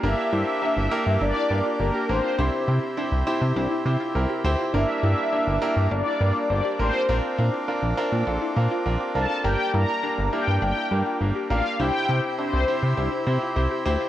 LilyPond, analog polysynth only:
\new Staff \with { instrumentName = "Analog polysynth" } { \time 4/4 \key g \dorian \tempo 4 = 102 e''2 d''4 bes'8 c''8~ | c''8 r2. r8 | e''2 d''4 d''8 c''8~ | c''8 r2. a''8 |
g''8 bes''4 g''8 g''4 r8 f''8 | g''4 c''2~ c''8 r8 | }